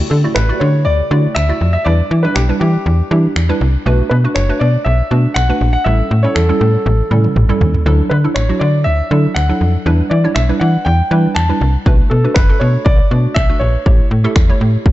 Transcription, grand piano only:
0.10 0.16 A4 medium
0.35 0.61 B4 medium
0.60 0.84 C#5 medium
0.85 1.37 D5 loud
1.35 1.72 E5 loud
1.73 1.86 E5 loud
1.85 2.25 D5 loud
2.23 2.36 B4 medium
2.35 2.40 G4 medium
2.60 3.07 G4 medium
4.10 4.15 B4 medium
4.35 4.61 C#5 medium
4.59 4.86 D5 medium
4.85 5.32 E5 loud
5.34 5.71 F#5 loud
5.73 5.86 F#5 loud
5.84 6.21 E5 medium
6.23 6.36 C#5 medium
6.35 6.58 A4 medium
6.60 7.07 A4 medium
8.10 8.15 B4 medium
8.34 8.61 C#5 medium
8.59 8.86 D5 medium
8.84 9.37 E5 medium
9.34 9.71 F#5 medium
10.10 10.36 D5 medium
10.35 10.40 E5 medium
10.60 10.84 F#5 medium
10.85 11.37 G5 medium
11.35 11.71 A5 loud
12.10 12.36 A4 medium
12.34 12.61 B4 medium
12.60 12.86 C#5 medium
12.85 13.37 D5 loud
13.35 13.61 E5 loud
13.60 14.92 C#5 medium

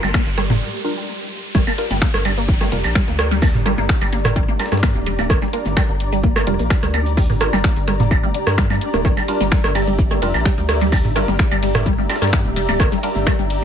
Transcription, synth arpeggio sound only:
0.03 0.07 G3 loud
0.14 0.19 A#3 medium
0.38 0.42 G3 loud
0.50 0.54 A#3 medium
1.55 1.59 G3 loud
1.67 1.71 A#3 medium
1.91 1.95 G3 loud
2.02 2.06 A#3 medium
2.25 2.30 G3 loud
2.38 2.41 A#3 medium
2.61 2.65 G3 loud
2.72 2.76 A#3 medium
2.95 3.00 G3 loud
3.08 3.12 A#3 medium
3.31 3.35 G3 loud
3.42 3.47 A#3 medium
3.66 3.70 G3 loud
3.78 3.82 A#3 medium
4.01 4.05 G3 loud
4.13 4.17 A#3 medium
4.36 4.41 G3 loud
4.48 4.52 A#3 medium
4.72 4.76 G3 loud
4.83 4.87 A#3 medium
5.06 5.11 G3 loud
5.19 5.23 A#3 medium
5.42 5.46 G3 loud
5.53 5.58 A#3 medium
5.77 5.81 G3 loud
5.89 5.93 A#3 medium
6.13 6.17 G3 loud
6.24 6.28 A#3 medium
6.47 6.51 G3 loud
6.59 6.63 A#3 medium
6.83 6.87 G3 loud
6.94 6.98 A#3 medium
7.17 7.22 G3 loud
7.30 7.34 A#3 medium
7.53 7.57 G3 loud
7.64 7.69 A#3 medium
7.88 7.92 G3 loud
8.00 8.04 A#3 medium
8.23 8.27 G3 loud
8.34 8.39 D3 medium
8.58 8.62 G3 loud
8.70 8.76 G3 medium
8.94 8.98 A#3 medium
9.05 9.09 G3 loud
9.17 9.21 G3 medium
9.41 9.45 G3 loud
9.52 9.56 G3 medium
9.75 9.80 G3 loud
9.87 9.91 G3 medium
10.11 10.15 G3 loud
10.22 10.26 G3 medium
10.46 10.50 G3 loud
10.58 10.62 G3 medium
10.81 10.85 G3 loud
10.92 10.97 G3 medium
11.16 11.20 G3 loud
11.28 11.32 G3 medium
11.52 11.56 G3 loud
11.63 11.67 G3 medium
11.86 11.91 G3 loud
11.98 12.02 G3 medium
12.22 12.26 G3 loud
12.33 12.37 G3 medium
12.56 12.61 G3 loud
12.69 12.73 G3 medium
12.92 12.96 G3 loud
13.03 13.08 G3 medium
13.27 13.31 G3 loud
13.39 13.43 G3 medium

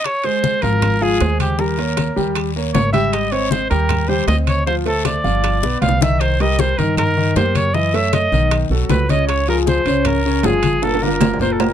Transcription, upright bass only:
0.63 1.17 G#1 medium
1.21 2.11 D#2 medium
2.17 2.71 D#2 medium
2.75 3.65 G#1 medium
3.71 4.25 D#2 medium
4.28 5.18 D2 medium
5.25 5.61 G1 medium
5.62 5.81 B1 medium
5.82 6.72 C2 medium
6.78 7.32 G2 medium
7.36 8.26 F#2 medium
8.32 8.68 B1 medium
8.70 8.88 B1 medium
8.89 9.80 C#2 medium
9.85 10.40 C#2 medium
10.43 11.34 G1 medium
11.39 11.73 F#1 medium

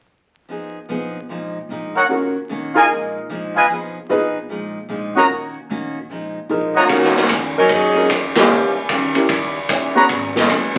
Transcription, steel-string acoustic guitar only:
0.49 0.76 F3 soft
0.49 0.77 B3 soft
0.49 0.77 D#4 soft
0.49 0.78 G#4 soft
0.89 1.17 F3 medium
0.89 1.17 B3 medium
0.89 1.17 D#4 medium
0.89 1.17 G#4 medium
1.29 1.57 A#2 soft
1.29 1.57 F3 soft
1.29 1.58 G#3 soft
1.29 1.58 D#4 soft
1.70 1.97 A#2 soft
1.70 1.98 F3 medium
1.70 1.98 G#3 medium
1.70 1.98 D#4 medium
2.10 2.37 D#3 soft
2.10 2.38 A#3 soft
2.10 2.38 C#4 soft
2.10 2.38 F#4 soft
2.49 2.77 D#3 medium
2.49 2.77 A#3 soft
2.49 2.78 C#4 medium
2.49 2.78 F#4 medium
2.90 3.17 A#2 soft
2.90 3.18 F3 soft
2.90 3.18 G#3 soft
2.90 3.18 D#4 soft
3.29 3.57 A#2 medium
3.29 3.57 F3 medium
3.29 3.58 G#3 medium
3.29 3.58 D#4 medium
3.69 3.97 F3 soft
3.69 3.98 B3 soft
3.69 3.98 D#4 soft
3.69 3.98 G#4 soft
4.09 4.37 F3 medium
4.09 4.37 B3 medium
4.09 4.38 D#4 medium
4.09 4.38 G#4 medium
4.49 4.77 A#2 soft
4.49 4.77 F3 soft
4.49 4.78 G#3 soft
4.49 4.78 D#4 medium
4.89 5.17 A#2 medium
4.89 5.17 F3 medium
4.89 5.17 G#3 medium
4.89 5.18 D#4 medium
5.29 5.57 D#3 soft
5.29 5.57 A#3 soft
5.29 5.58 C#4 soft
5.29 5.58 F#4 soft
5.70 5.97 D#3 medium
5.70 5.98 A#3 medium
5.70 5.98 C#4 medium
5.70 5.98 F#4 medium
6.10 6.37 A#2 soft
6.10 6.38 F3 soft
6.10 6.38 G#3 soft
6.10 6.38 D#4 soft
6.49 6.77 A#2 medium
6.49 6.77 F3 medium
6.49 6.78 G#3 medium
6.49 6.78 D#4 medium
6.89 7.17 D#3 soft
6.89 7.17 A#3 soft
6.89 7.18 C#4 soft
6.89 7.18 F#4 soft
7.29 7.57 D#3 medium
7.29 7.57 A#3 medium
7.29 7.57 C#4 medium
7.29 7.58 F#4 medium
7.69 7.97 D#3 soft
7.69 7.97 A#3 soft
7.69 7.98 C#4 soft
7.69 7.98 F#4 soft
8.09 8.37 D#3 medium
8.09 8.37 A#3 medium
8.09 8.37 C#4 soft
8.09 8.38 F#4 soft
8.49 8.77 D#3 soft
8.49 8.77 G3 soft
8.49 8.78 C#4 soft
8.49 8.78 E4 soft
8.90 9.18 D#3 medium
8.90 9.18 G3 medium
8.90 9.18 C#4 medium
8.90 9.18 E4 medium
9.29 9.57 D#3 soft
9.29 9.58 G3 soft
9.29 9.58 C#4 soft
9.29 9.59 E4 medium
9.70 9.97 D#3 medium
9.70 9.97 G3 medium
9.70 9.98 C#4 medium
9.70 9.98 E4 medium
10.09 10.37 G#2 soft
10.09 10.37 F#3 soft
10.09 10.38 B3 soft
10.09 10.38 C#4 medium
10.49 10.77 G#2 medium
10.49 10.77 F#3 medium
10.49 10.77 B3 medium
10.49 10.78 C#4 medium

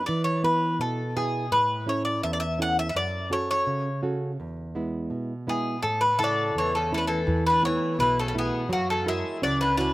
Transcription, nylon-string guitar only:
0.09 0.78 E3 medium
0.43 1.01 B3 soft
0.43 1.01 E4 soft
0.43 1.01 B4 medium
0.79 1.49 B2 medium
1.16 1.44 B3 soft
1.16 1.45 E4 soft
1.16 1.45 G#4 medium
1.51 2.21 A2 medium
1.87 2.44 C#4 soft
1.87 2.44 E4 soft
1.87 2.45 A4 soft
2.23 2.93 E2 medium
2.58 2.87 C#4 soft
2.58 2.88 E4 soft
2.58 2.88 A4 soft
2.95 3.65 F#2 medium
3.30 3.88 C#4 soft
3.30 3.88 F#4 soft
3.30 3.88 A4 soft
3.67 4.36 C#3 medium
4.02 4.31 C#4 soft
4.02 4.31 F#4 soft
4.02 4.32 A4 soft
4.40 5.09 E2 medium
4.75 5.32 G#3 soft
4.75 5.32 B3 soft
4.75 5.33 E4 soft
5.10 5.80 B2 medium
5.47 5.76 G#3 soft
5.47 5.76 B3 soft
5.47 5.76 E4 soft
5.83 6.52 A2 medium
6.19 6.76 C#3 soft
6.19 6.76 A3 soft
6.19 6.77 E4 soft
6.55 7.24 E2 medium
6.92 7.20 A3 soft
6.92 7.20 C#4 soft
6.92 7.20 E4 soft
7.27 7.96 E3 medium
7.62 8.20 A3 soft
7.62 8.20 B3 soft
7.62 8.20 E4 soft
7.99 8.68 B2 medium
8.34 8.63 A3 medium
8.34 8.63 B3 soft
8.34 8.63 E4 medium
8.69 9.39 F#3 medium
9.06 9.63 E4 soft
9.06 9.64 F#4 soft
9.06 9.64 A#4 soft
9.42 9.93 C#4 medium
9.78 9.93 E4 soft
9.78 9.93 F#4 soft
9.78 9.93 C#5 medium

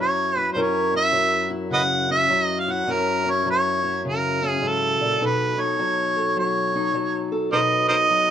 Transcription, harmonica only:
0.01 0.38 C#5 medium
0.38 0.49 B4 medium
0.53 0.63 C5 medium
0.61 0.96 C#5 medium
0.97 1.49 E5 loud
1.73 1.82 B4 medium
1.73 1.82 D#5 medium
1.73 2.08 F#5 loud
2.11 2.43 E5 loud
2.43 2.61 D#5 loud
2.60 2.73 F5 medium
2.71 2.94 F#5 medium
2.92 3.32 A#4 medium
3.30 3.48 C#5 medium
3.51 4.03 C#5 medium
4.09 4.49 A#4 medium
4.49 4.69 G#4 medium
4.68 5.27 A4 medium
5.26 5.62 B4 medium
5.61 6.37 C#5 medium
6.39 7.29 C#5 medium
7.52 7.60 A#4 medium
7.52 7.59 C5 medium
7.52 7.87 D#5 medium
7.88 7.95 A#4 medium
7.88 7.95 C5 medium
7.88 8.30 D#5 loud

